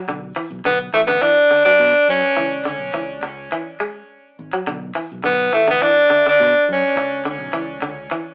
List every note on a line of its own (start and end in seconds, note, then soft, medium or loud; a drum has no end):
0.08 0.31 B1 medium
0.08 0.30 D3 medium
0.36 0.58 E3 medium
0.50 0.62 B1 medium
0.64 0.88 B1 medium
0.64 0.87 D3 medium
0.64 0.78 B3 medium
0.93 1.17 A1 medium
0.93 1.05 E3 medium
0.93 1.01 A3 medium
1.07 1.18 D3 medium
1.07 1.23 B3 medium
1.22 1.44 E3 medium
1.22 1.64 D4 medium
1.51 1.62 D3 medium
1.65 1.87 F#3 medium
1.65 2.05 D4 medium
1.79 1.92 B2 medium
2.08 2.21 F#2 medium
2.08 2.62 C#4 medium
2.37 2.80 C#2 medium
2.37 2.58 E3 medium
2.65 2.87 D3 medium
2.80 2.92 B1 medium
2.94 3.18 C#2 medium
2.94 3.16 E3 medium
3.23 3.47 C#2 medium
3.23 muted clean electric guitar stroke medium
3.52 3.74 E3 medium
3.80 4.02 G#3 medium
4.39 4.51 G#1 medium
4.53 4.64 F#3 medium
4.67 4.91 B1 medium
4.67 4.89 D3 medium
4.95 5.17 E3 medium
5.12 5.23 B1 medium
5.24 5.49 B1 medium
5.24 5.46 D3 medium
5.24 5.52 B3 medium
5.53 5.77 A1 medium
5.53 5.64 E3 medium
5.53 5.68 A3 medium
5.68 5.78 D3 medium
5.68 5.84 B3 medium
5.82 6.04 E3 medium
5.82 6.26 D4 loud
6.10 6.22 D3 medium
6.26 6.48 D3 medium
6.26 6.67 D4 medium
6.40 6.52 B2 medium
6.69 6.81 F#2 medium
6.69 7.24 C#4 medium
6.96 7.40 C#2 medium
6.96 muted clean electric guitar stroke medium
7.25 7.47 D3 medium
7.40 7.51 B1 medium
7.53 7.77 C#2 medium
7.53 7.75 E3 medium
7.82 8.06 C#2 medium
7.82 8.04 D3 medium
8.11 8.33 E3 medium